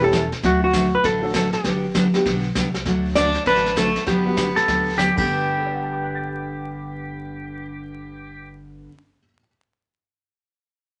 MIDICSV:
0, 0, Header, 1, 8, 480
1, 0, Start_track
1, 0, Key_signature, 1, "major"
1, 0, Tempo, 303183
1, 682, Time_signature, 4, 2, 24, 8
1, 17415, End_track
2, 0, Start_track
2, 0, Title_t, "Hollow-body jazz guitar"
2, 0, Program_c, 0, 26
2, 62, Note_on_c, 0, 69, 95
2, 491, Note_off_c, 0, 69, 0
2, 717, Note_on_c, 0, 66, 86
2, 992, Note_off_c, 0, 66, 0
2, 1011, Note_on_c, 0, 66, 87
2, 1492, Note_off_c, 0, 66, 0
2, 1500, Note_on_c, 0, 71, 89
2, 1663, Note_on_c, 0, 69, 95
2, 1665, Note_off_c, 0, 71, 0
2, 2135, Note_off_c, 0, 69, 0
2, 2154, Note_on_c, 0, 69, 78
2, 2424, Note_off_c, 0, 69, 0
2, 2430, Note_on_c, 0, 67, 78
2, 3981, Note_off_c, 0, 67, 0
2, 4995, Note_on_c, 0, 74, 98
2, 5493, Note_off_c, 0, 74, 0
2, 5499, Note_on_c, 0, 71, 102
2, 5978, Note_on_c, 0, 69, 80
2, 5984, Note_off_c, 0, 71, 0
2, 6449, Note_off_c, 0, 69, 0
2, 6455, Note_on_c, 0, 67, 80
2, 7825, Note_off_c, 0, 67, 0
2, 17415, End_track
3, 0, Start_track
3, 0, Title_t, "Pedal steel guitar"
3, 0, Program_c, 1, 26
3, 7223, Note_on_c, 1, 69, 93
3, 7862, Note_off_c, 1, 69, 0
3, 17415, End_track
4, 0, Start_track
4, 0, Title_t, "Upright piano"
4, 0, Program_c, 2, 0
4, 2, Note_on_c, 2, 55, 82
4, 6, Note_on_c, 2, 57, 75
4, 16, Note_on_c, 2, 61, 78
4, 22, Note_on_c, 2, 64, 75
4, 28, Note_on_c, 2, 67, 94
4, 173, Note_off_c, 2, 55, 0
4, 175, Note_off_c, 2, 57, 0
4, 180, Note_off_c, 2, 61, 0
4, 183, Note_off_c, 2, 64, 0
4, 186, Note_off_c, 2, 67, 0
4, 1918, Note_on_c, 2, 54, 84
4, 1927, Note_on_c, 2, 57, 73
4, 1932, Note_on_c, 2, 62, 76
4, 1936, Note_on_c, 2, 66, 73
4, 1941, Note_on_c, 2, 69, 92
4, 2091, Note_off_c, 2, 54, 0
4, 2096, Note_off_c, 2, 57, 0
4, 2098, Note_off_c, 2, 62, 0
4, 2100, Note_off_c, 2, 66, 0
4, 2103, Note_off_c, 2, 69, 0
4, 3376, Note_on_c, 2, 55, 67
4, 3381, Note_on_c, 2, 59, 66
4, 3389, Note_on_c, 2, 62, 65
4, 3393, Note_on_c, 2, 66, 61
4, 3402, Note_on_c, 2, 67, 78
4, 3540, Note_off_c, 2, 55, 0
4, 3543, Note_off_c, 2, 59, 0
4, 3546, Note_off_c, 2, 62, 0
4, 3549, Note_off_c, 2, 66, 0
4, 3553, Note_off_c, 2, 67, 0
4, 4515, Note_on_c, 2, 54, 65
4, 4518, Note_on_c, 2, 57, 56
4, 4524, Note_on_c, 2, 62, 60
4, 4535, Note_on_c, 2, 66, 70
4, 5851, Note_off_c, 2, 54, 0
4, 5852, Note_off_c, 2, 57, 0
4, 5856, Note_off_c, 2, 62, 0
4, 5861, Note_off_c, 2, 66, 0
4, 6730, Note_on_c, 2, 55, 69
4, 6735, Note_on_c, 2, 59, 59
4, 6742, Note_on_c, 2, 62, 62
4, 6755, Note_on_c, 2, 66, 76
4, 6897, Note_off_c, 2, 55, 0
4, 6899, Note_off_c, 2, 59, 0
4, 6903, Note_off_c, 2, 62, 0
4, 6909, Note_off_c, 2, 66, 0
4, 8165, Note_on_c, 2, 43, 69
4, 8170, Note_on_c, 2, 50, 62
4, 8183, Note_on_c, 2, 57, 64
4, 8199, Note_on_c, 2, 59, 63
4, 8842, Note_on_c, 2, 69, 45
4, 8955, Note_on_c, 2, 74, 44
4, 9087, Note_on_c, 2, 78, 40
4, 9234, Note_on_c, 2, 81, 41
4, 9388, Note_on_c, 2, 86, 37
4, 9561, Note_on_c, 2, 90, 37
4, 9738, Note_on_c, 2, 93, 37
4, 14055, Note_off_c, 2, 43, 0
4, 14059, Note_off_c, 2, 50, 0
4, 14072, Note_off_c, 2, 57, 0
4, 14088, Note_off_c, 2, 59, 0
4, 14513, Note_off_c, 2, 69, 0
4, 14570, Note_off_c, 2, 74, 0
4, 14636, Note_off_c, 2, 78, 0
4, 14709, Note_off_c, 2, 81, 0
4, 14786, Note_off_c, 2, 86, 0
4, 14873, Note_off_c, 2, 90, 0
4, 14961, Note_off_c, 2, 93, 0
4, 17415, End_track
5, 0, Start_track
5, 0, Title_t, "Fiddle"
5, 0, Program_c, 3, 110
5, 4996, Note_on_c, 3, 62, 86
5, 5445, Note_off_c, 3, 62, 0
5, 5490, Note_on_c, 3, 62, 78
5, 5933, Note_off_c, 3, 62, 0
5, 5983, Note_on_c, 3, 57, 79
5, 6419, Note_off_c, 3, 57, 0
5, 6463, Note_on_c, 3, 59, 76
5, 7829, Note_off_c, 3, 59, 0
5, 17415, End_track
6, 0, Start_track
6, 0, Title_t, "Steel-string acoustic guitar"
6, 0, Program_c, 4, 25
6, 190, Note_on_c, 4, 52, 77
6, 195, Note_on_c, 4, 55, 66
6, 204, Note_on_c, 4, 61, 74
6, 209, Note_on_c, 4, 64, 73
6, 220, Note_on_c, 4, 69, 88
6, 375, Note_off_c, 4, 52, 0
6, 377, Note_off_c, 4, 55, 0
6, 382, Note_off_c, 4, 61, 0
6, 384, Note_off_c, 4, 64, 0
6, 390, Note_off_c, 4, 69, 0
6, 667, Note_on_c, 4, 50, 59
6, 683, Note_on_c, 4, 54, 63
6, 686, Note_on_c, 4, 57, 73
6, 691, Note_on_c, 4, 62, 64
6, 692, Note_on_c, 4, 66, 65
6, 998, Note_off_c, 4, 50, 0
6, 1006, Note_off_c, 4, 54, 0
6, 1007, Note_off_c, 4, 57, 0
6, 1010, Note_off_c, 4, 62, 0
6, 1011, Note_off_c, 4, 66, 0
6, 1167, Note_on_c, 4, 50, 77
6, 1169, Note_on_c, 4, 54, 81
6, 1175, Note_on_c, 4, 57, 81
6, 1178, Note_on_c, 4, 62, 79
6, 1189, Note_on_c, 4, 66, 77
6, 1344, Note_off_c, 4, 50, 0
6, 1345, Note_off_c, 4, 54, 0
6, 1348, Note_off_c, 4, 57, 0
6, 1349, Note_off_c, 4, 62, 0
6, 1354, Note_off_c, 4, 66, 0
6, 1637, Note_on_c, 4, 50, 60
6, 1654, Note_on_c, 4, 54, 60
6, 1657, Note_on_c, 4, 57, 59
6, 1660, Note_on_c, 4, 62, 64
6, 1661, Note_on_c, 4, 66, 66
6, 1963, Note_off_c, 4, 50, 0
6, 1972, Note_off_c, 4, 54, 0
6, 1973, Note_off_c, 4, 57, 0
6, 1975, Note_off_c, 4, 62, 0
6, 1975, Note_off_c, 4, 66, 0
6, 2135, Note_on_c, 4, 50, 72
6, 2140, Note_on_c, 4, 54, 73
6, 2149, Note_on_c, 4, 57, 72
6, 2156, Note_on_c, 4, 62, 73
6, 2156, Note_on_c, 4, 66, 87
6, 2308, Note_off_c, 4, 50, 0
6, 2311, Note_off_c, 4, 54, 0
6, 2315, Note_off_c, 4, 57, 0
6, 2318, Note_off_c, 4, 62, 0
6, 2318, Note_off_c, 4, 66, 0
6, 2609, Note_on_c, 4, 50, 60
6, 2616, Note_on_c, 4, 54, 65
6, 2619, Note_on_c, 4, 59, 66
6, 2624, Note_on_c, 4, 62, 66
6, 2633, Note_on_c, 4, 67, 64
6, 2929, Note_off_c, 4, 50, 0
6, 2932, Note_off_c, 4, 54, 0
6, 2934, Note_off_c, 4, 59, 0
6, 2937, Note_off_c, 4, 62, 0
6, 2941, Note_off_c, 4, 67, 0
6, 3075, Note_on_c, 4, 50, 78
6, 3079, Note_on_c, 4, 59, 74
6, 3086, Note_on_c, 4, 54, 80
6, 3099, Note_on_c, 4, 67, 84
6, 3100, Note_on_c, 4, 62, 78
6, 3257, Note_off_c, 4, 50, 0
6, 3260, Note_off_c, 4, 59, 0
6, 3263, Note_off_c, 4, 54, 0
6, 3270, Note_off_c, 4, 62, 0
6, 3270, Note_off_c, 4, 67, 0
6, 3577, Note_on_c, 4, 50, 59
6, 3584, Note_on_c, 4, 54, 59
6, 3588, Note_on_c, 4, 62, 62
6, 3590, Note_on_c, 4, 59, 62
6, 3601, Note_on_c, 4, 67, 67
6, 3893, Note_off_c, 4, 50, 0
6, 3897, Note_off_c, 4, 54, 0
6, 3898, Note_off_c, 4, 62, 0
6, 3899, Note_off_c, 4, 59, 0
6, 3905, Note_off_c, 4, 67, 0
6, 4043, Note_on_c, 4, 50, 74
6, 4050, Note_on_c, 4, 54, 74
6, 4053, Note_on_c, 4, 59, 73
6, 4058, Note_on_c, 4, 62, 77
6, 4069, Note_on_c, 4, 67, 88
6, 4222, Note_off_c, 4, 50, 0
6, 4225, Note_off_c, 4, 54, 0
6, 4226, Note_off_c, 4, 59, 0
6, 4229, Note_off_c, 4, 62, 0
6, 4235, Note_off_c, 4, 67, 0
6, 4539, Note_on_c, 4, 50, 53
6, 4543, Note_on_c, 4, 54, 64
6, 4554, Note_on_c, 4, 62, 60
6, 4555, Note_on_c, 4, 57, 69
6, 4564, Note_on_c, 4, 66, 67
6, 4854, Note_off_c, 4, 50, 0
6, 4856, Note_off_c, 4, 54, 0
6, 4861, Note_off_c, 4, 62, 0
6, 4862, Note_off_c, 4, 57, 0
6, 4866, Note_off_c, 4, 66, 0
6, 5010, Note_on_c, 4, 50, 67
6, 5014, Note_on_c, 4, 54, 75
6, 5019, Note_on_c, 4, 57, 80
6, 5032, Note_on_c, 4, 62, 77
6, 5032, Note_on_c, 4, 66, 77
6, 5185, Note_off_c, 4, 50, 0
6, 5187, Note_off_c, 4, 54, 0
6, 5189, Note_off_c, 4, 57, 0
6, 5196, Note_off_c, 4, 62, 0
6, 5196, Note_off_c, 4, 66, 0
6, 5484, Note_on_c, 4, 50, 61
6, 5491, Note_on_c, 4, 57, 64
6, 5496, Note_on_c, 4, 54, 57
6, 5500, Note_on_c, 4, 62, 58
6, 5504, Note_on_c, 4, 66, 63
6, 5806, Note_off_c, 4, 50, 0
6, 5810, Note_off_c, 4, 57, 0
6, 5812, Note_off_c, 4, 54, 0
6, 5814, Note_off_c, 4, 62, 0
6, 5816, Note_off_c, 4, 66, 0
6, 5951, Note_on_c, 4, 50, 70
6, 5954, Note_on_c, 4, 57, 83
6, 5962, Note_on_c, 4, 54, 69
6, 5965, Note_on_c, 4, 66, 88
6, 5968, Note_on_c, 4, 62, 84
6, 6135, Note_off_c, 4, 50, 0
6, 6137, Note_off_c, 4, 57, 0
6, 6141, Note_off_c, 4, 54, 0
6, 6142, Note_off_c, 4, 66, 0
6, 6144, Note_off_c, 4, 62, 0
6, 6452, Note_on_c, 4, 50, 59
6, 6469, Note_on_c, 4, 54, 61
6, 6473, Note_on_c, 4, 59, 66
6, 6476, Note_on_c, 4, 62, 65
6, 6489, Note_on_c, 4, 67, 67
6, 6770, Note_off_c, 4, 50, 0
6, 6778, Note_off_c, 4, 54, 0
6, 6781, Note_off_c, 4, 59, 0
6, 6782, Note_off_c, 4, 62, 0
6, 6789, Note_off_c, 4, 67, 0
6, 6915, Note_on_c, 4, 50, 75
6, 6916, Note_on_c, 4, 54, 75
6, 6924, Note_on_c, 4, 62, 78
6, 6927, Note_on_c, 4, 59, 75
6, 6937, Note_on_c, 4, 67, 79
6, 7097, Note_off_c, 4, 50, 0
6, 7098, Note_off_c, 4, 54, 0
6, 7102, Note_off_c, 4, 62, 0
6, 7103, Note_off_c, 4, 59, 0
6, 7108, Note_off_c, 4, 67, 0
6, 7407, Note_on_c, 4, 50, 62
6, 7416, Note_on_c, 4, 54, 61
6, 7428, Note_on_c, 4, 59, 52
6, 7433, Note_on_c, 4, 62, 57
6, 7435, Note_on_c, 4, 67, 58
6, 7728, Note_off_c, 4, 50, 0
6, 7732, Note_off_c, 4, 54, 0
6, 7738, Note_off_c, 4, 59, 0
6, 7741, Note_off_c, 4, 62, 0
6, 7742, Note_off_c, 4, 67, 0
6, 7868, Note_on_c, 4, 50, 64
6, 7868, Note_on_c, 4, 54, 73
6, 7884, Note_on_c, 4, 59, 80
6, 7888, Note_on_c, 4, 62, 70
6, 7890, Note_on_c, 4, 67, 82
6, 8054, Note_off_c, 4, 50, 0
6, 8054, Note_off_c, 4, 54, 0
6, 8062, Note_off_c, 4, 59, 0
6, 8064, Note_off_c, 4, 62, 0
6, 8065, Note_off_c, 4, 67, 0
6, 8176, Note_on_c, 4, 43, 63
6, 8198, Note_on_c, 4, 50, 67
6, 8218, Note_on_c, 4, 59, 68
6, 8227, Note_on_c, 4, 62, 66
6, 8239, Note_on_c, 4, 67, 73
6, 14065, Note_off_c, 4, 43, 0
6, 14087, Note_off_c, 4, 50, 0
6, 14108, Note_off_c, 4, 59, 0
6, 14116, Note_off_c, 4, 62, 0
6, 14129, Note_off_c, 4, 67, 0
6, 17415, End_track
7, 0, Start_track
7, 0, Title_t, "Upright bass"
7, 0, Program_c, 5, 32
7, 0, Note_on_c, 5, 28, 82
7, 487, Note_off_c, 5, 28, 0
7, 685, Note_on_c, 5, 38, 94
7, 1452, Note_off_c, 5, 38, 0
7, 1639, Note_on_c, 5, 33, 80
7, 2408, Note_off_c, 5, 33, 0
7, 2597, Note_on_c, 5, 31, 88
7, 3367, Note_off_c, 5, 31, 0
7, 3563, Note_on_c, 5, 35, 77
7, 3971, Note_off_c, 5, 35, 0
7, 4041, Note_on_c, 5, 36, 81
7, 4449, Note_off_c, 5, 36, 0
7, 4517, Note_on_c, 5, 38, 90
7, 5287, Note_off_c, 5, 38, 0
7, 5476, Note_on_c, 5, 33, 79
7, 6246, Note_off_c, 5, 33, 0
7, 6439, Note_on_c, 5, 31, 85
7, 7208, Note_off_c, 5, 31, 0
7, 7404, Note_on_c, 5, 38, 76
7, 8028, Note_off_c, 5, 38, 0
7, 8189, Note_on_c, 5, 31, 85
7, 14015, Note_off_c, 5, 31, 0
7, 17415, End_track
8, 0, Start_track
8, 0, Title_t, "Drums"
8, 203, Note_on_c, 9, 38, 65
8, 203, Note_on_c, 9, 44, 63
8, 204, Note_on_c, 9, 36, 22
8, 361, Note_off_c, 9, 38, 0
8, 361, Note_off_c, 9, 44, 0
8, 362, Note_off_c, 9, 36, 0
8, 510, Note_on_c, 9, 38, 43
8, 668, Note_off_c, 9, 38, 0
8, 683, Note_on_c, 9, 36, 23
8, 687, Note_on_c, 9, 25, 45
8, 687, Note_on_c, 9, 38, 48
8, 841, Note_off_c, 9, 36, 0
8, 846, Note_off_c, 9, 38, 0
8, 1160, Note_on_c, 9, 38, 60
8, 1160, Note_on_c, 9, 44, 59
8, 1162, Note_on_c, 9, 36, 26
8, 1318, Note_off_c, 9, 38, 0
8, 1318, Note_off_c, 9, 44, 0
8, 1321, Note_off_c, 9, 36, 0
8, 1643, Note_off_c, 9, 25, 0
8, 1643, Note_on_c, 9, 25, 56
8, 1643, Note_on_c, 9, 36, 25
8, 1643, Note_on_c, 9, 38, 44
8, 1802, Note_off_c, 9, 36, 0
8, 1802, Note_off_c, 9, 38, 0
8, 2119, Note_on_c, 9, 38, 60
8, 2119, Note_on_c, 9, 44, 54
8, 2124, Note_on_c, 9, 36, 25
8, 2277, Note_off_c, 9, 38, 0
8, 2277, Note_off_c, 9, 44, 0
8, 2282, Note_off_c, 9, 36, 0
8, 2418, Note_on_c, 9, 38, 41
8, 2577, Note_off_c, 9, 38, 0
8, 2601, Note_off_c, 9, 25, 0
8, 2601, Note_on_c, 9, 25, 54
8, 2601, Note_on_c, 9, 38, 48
8, 2604, Note_on_c, 9, 36, 20
8, 2760, Note_off_c, 9, 38, 0
8, 2762, Note_off_c, 9, 36, 0
8, 3084, Note_on_c, 9, 38, 65
8, 3084, Note_on_c, 9, 44, 54
8, 3087, Note_on_c, 9, 36, 20
8, 3243, Note_off_c, 9, 38, 0
8, 3243, Note_off_c, 9, 44, 0
8, 3245, Note_off_c, 9, 36, 0
8, 3385, Note_on_c, 9, 38, 40
8, 3543, Note_off_c, 9, 38, 0
8, 3567, Note_on_c, 9, 36, 24
8, 3569, Note_off_c, 9, 25, 0
8, 3569, Note_on_c, 9, 25, 48
8, 3569, Note_on_c, 9, 38, 47
8, 3726, Note_off_c, 9, 36, 0
8, 3727, Note_off_c, 9, 38, 0
8, 4042, Note_on_c, 9, 38, 62
8, 4042, Note_on_c, 9, 44, 48
8, 4045, Note_on_c, 9, 36, 22
8, 4200, Note_off_c, 9, 38, 0
8, 4200, Note_off_c, 9, 44, 0
8, 4203, Note_off_c, 9, 36, 0
8, 4344, Note_on_c, 9, 38, 42
8, 4502, Note_off_c, 9, 38, 0
8, 4520, Note_off_c, 9, 25, 0
8, 4520, Note_on_c, 9, 25, 46
8, 4520, Note_on_c, 9, 38, 47
8, 4522, Note_on_c, 9, 36, 27
8, 4678, Note_off_c, 9, 38, 0
8, 4681, Note_off_c, 9, 36, 0
8, 4994, Note_on_c, 9, 38, 62
8, 4994, Note_on_c, 9, 44, 56
8, 5001, Note_on_c, 9, 36, 22
8, 5152, Note_off_c, 9, 38, 0
8, 5152, Note_off_c, 9, 44, 0
8, 5159, Note_off_c, 9, 36, 0
8, 5297, Note_on_c, 9, 38, 40
8, 5455, Note_off_c, 9, 38, 0
8, 5477, Note_off_c, 9, 25, 0
8, 5477, Note_on_c, 9, 25, 51
8, 5477, Note_on_c, 9, 38, 44
8, 5478, Note_on_c, 9, 36, 21
8, 5635, Note_off_c, 9, 38, 0
8, 5637, Note_off_c, 9, 36, 0
8, 5640, Note_on_c, 9, 38, 30
8, 5799, Note_off_c, 9, 38, 0
8, 5799, Note_on_c, 9, 38, 41
8, 5957, Note_off_c, 9, 38, 0
8, 5961, Note_on_c, 9, 36, 22
8, 5965, Note_on_c, 9, 38, 59
8, 5965, Note_on_c, 9, 44, 64
8, 6119, Note_off_c, 9, 36, 0
8, 6123, Note_off_c, 9, 38, 0
8, 6123, Note_off_c, 9, 44, 0
8, 6265, Note_on_c, 9, 38, 44
8, 6423, Note_off_c, 9, 38, 0
8, 6437, Note_off_c, 9, 25, 0
8, 6437, Note_on_c, 9, 25, 48
8, 6437, Note_on_c, 9, 38, 44
8, 6440, Note_on_c, 9, 36, 27
8, 6595, Note_off_c, 9, 38, 0
8, 6599, Note_off_c, 9, 36, 0
8, 6918, Note_on_c, 9, 38, 61
8, 6918, Note_on_c, 9, 44, 54
8, 6921, Note_on_c, 9, 36, 23
8, 7077, Note_off_c, 9, 38, 0
8, 7077, Note_off_c, 9, 44, 0
8, 7080, Note_off_c, 9, 36, 0
8, 7224, Note_on_c, 9, 38, 39
8, 7382, Note_off_c, 9, 38, 0
8, 7407, Note_on_c, 9, 36, 21
8, 7411, Note_off_c, 9, 25, 0
8, 7411, Note_on_c, 9, 25, 49
8, 7411, Note_on_c, 9, 38, 45
8, 7565, Note_off_c, 9, 36, 0
8, 7569, Note_off_c, 9, 38, 0
8, 7889, Note_on_c, 9, 36, 24
8, 7898, Note_on_c, 9, 38, 62
8, 7898, Note_on_c, 9, 44, 53
8, 8047, Note_off_c, 9, 36, 0
8, 8057, Note_off_c, 9, 38, 0
8, 8057, Note_off_c, 9, 44, 0
8, 8188, Note_off_c, 9, 25, 0
8, 8191, Note_on_c, 9, 36, 61
8, 8193, Note_on_c, 9, 49, 63
8, 8350, Note_off_c, 9, 36, 0
8, 8352, Note_off_c, 9, 49, 0
8, 17415, End_track
0, 0, End_of_file